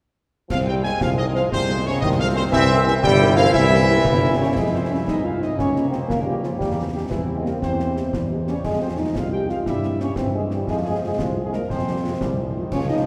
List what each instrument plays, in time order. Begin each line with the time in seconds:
0.49 tuba C2, euphonium F3, trombone section C4, trumpet section F5, concert bass drum, snare, crash
0.67 euphonium G3, french horn section C4 G#4 C5, trumpet section G5
0.84 euphonium G#3, french horn section C4 G#4 C5, trumpet section G#5, snare
1.01 tuba C2, euphonium F3, trombone section G#3, trumpet section F5, concert bass drum, snare
1.18 euphonium D#3, french horn section C4 G#4 C5, trumpet section D#5
1.35 euphonium F3, french horn section C4 G#4 C5, trumpet section F5, snare
1.52 tuba C2, euphonium C3, trumpet section C5, concert bass drum, snare
1.69 french horn section C4 G#4 C5
1.86 euphonium C#3, french horn section C4 G#4 C5, trumpet section C#5
2.01 tuba C2, euphonium D#3, trombone section C4, trumpet section D#5, concert bass drum, snare
2.19 euphonium F3, french horn section C4 G#4 C5, trumpet section F5
2.36 euphonium C3, french horn section C4 G#4 C5, trumpet section C5
2.52 tuba C2, euphonium E3, trombone section C4, trumpet section E5, concert bass drum, snare, crash
2.72 french horn section C#4 G4 A#4
2.86 euphonium E3, french horn section C#4 G4 A#4, trumpet section E5, snare
3.03 tuba G1, euphonium G3, trombone section E4, trumpet section G5, concert bass drum, snare
3.22 french horn section C#4 G4 A#4
3.36 euphonium F3, french horn section C#4 G4 A#4, trumpet section F5, snare
3.54 tuba C2, euphonium E3, trumpet section E5, concert bass drum, snare
3.72 french horn section C#4 G4 A#4
3.89 french horn section C#4 G4 A#4
4.05 tuba G1, trombone section E4, concert bass drum, snare
4.24 french horn section C#4 G4 A#4
4.39 euphonium C#4, french horn section C#4 G4 A#4, trumpet section C#5
4.56 tuba F2, euphonium G#3, trumpet section G#4, concert bass drum, snare, crash
4.73 euphonium C4, french horn section C4 F4, trumpet section C5
4.90 french horn section C4 F4, euphonium C#4, trumpet section C#5
5.06 tuba C2, trombone section G#3, euphonium D#4, trumpet section D#5, concert bass drum, snare
5.24 french horn section C4 F4, euphonium F4, trumpet section F5
5.41 french horn section C4 F4, euphonium D#4, trumpet section D#5, snare
5.58 tuba C#2, trombone section A#3, euphonium C#4, trumpet section C#5, concert bass drum, snare
5.76 french horn section A#3 F4, snare
5.90 french horn section A#3 F4, euphonium C4, trumpet section C5, snare
6.07 tuba C#2, euphonium A#3, trumpet section A#4, concert bass drum, snare
6.24 euphonium G3, french horn section A#3 F4
6.29 trumpet section G4
6.42 euphonium F3, french horn section A#3 F4, trumpet section F4, snare
6.58 tuba E2, euphonium G3, trumpet section G4, concert bass drum, snare
6.74 euphonium G3, french horn section A#3 C4 G4
6.79 trumpet section G4
6.93 euphonium G3, french horn section A#3 C4 G4, trumpet section G4
7.09 tuba E2, euphonium E3, trombone section C4, trumpet section E4, concert bass drum, snare
7.28 french horn section A#3 C4 G4
7.36 euphonium G#3, trumpet section G#4
7.43 euphonium A#3, french horn section A#3 C4 G4, trumpet section A#4, snare
7.61 tuba E2, trombone section E3, euphonium C4, trumpet section C5, concert bass drum, snare
7.79 french horn section A#3 C4 G4, snare
7.96 french horn section A#3 C4 G4, snare
8.13 tuba E2, trombone section G3, concert bass drum, snare
8.30 trombone section G#3, french horn section A#3 C4 G4
8.46 trombone section G3, french horn section A#3 C4 G4, euphonium C#4, trumpet section C#5, snare
8.63 tuba F2, trombone section F3, euphonium G#3, trumpet section G#4, concert bass drum, snare, crash
8.81 french horn section G#3 C4 F4, euphonium C4, trumpet section C5
8.97 french horn section G#3 C4 F4, euphonium D#4, trumpet section D#5
9.15 tuba C2, trombone section G#3, euphonium F4, trumpet section F5, concert bass drum, snare
9.32 french horn section G#3 C4 F4, euphonium G4, trumpet section G5
9.49 french horn section G#3 C4 F4, euphonium F4, trumpet section F5, snare
9.65 tuba G2, trombone section G3, euphonium E4, trumpet section E5, concert bass drum, snare
9.83 french horn section G3 A#3 C4, snare
10.00 french horn section G3 A#3 C4, euphonium C#4, trumpet section C#5, snare
10.16 tuba G2, trombone section E3, euphonium C4, trumpet section C5, concert bass drum, snare
10.34 french horn section G3 A#3 C4, euphonium G#3, trumpet section G#4
10.51 french horn section G3 A#3 C4, euphonium G3, trumpet section G4, snare
10.67 tuba F2, trombone section F3, euphonium G#3, trumpet section G#4, concert bass drum, snare
10.84 french horn section G#3 F4, euphonium G#3, trumpet section G#4
11.01 french horn section G#3 F4, trumpet section G#4
11.05 euphonium G#3
11.18 tuba C2, euphonium F3, trombone section G#3, trumpet section F4, concert bass drum, snare
11.36 french horn section G#3 F4
11.44 euphonium G#3, trumpet section G#4
11.53 french horn section G#3 F4, euphonium A#3, trumpet section A#4, snare
11.69 tuba F2, trombone section F3, euphonium C4, trumpet section C5, concert bass drum, snare
11.87 trombone section G3, french horn section G#3 F4
12.05 trombone section G#3, french horn section G#3 F4
12.21 tuba C2, trombone section G3, concert bass drum, snare
12.38 trombone section F3, french horn section G#3 F4
12.55 trombone section D#3, french horn section G#3 F4
12.72 tuba C#2, trombone section F3, euphonium C#4, trumpet section C#5, concert bass drum, snare, crash
12.89 french horn section G#3 C#4 F4, euphonium D#4, trumpet section D#5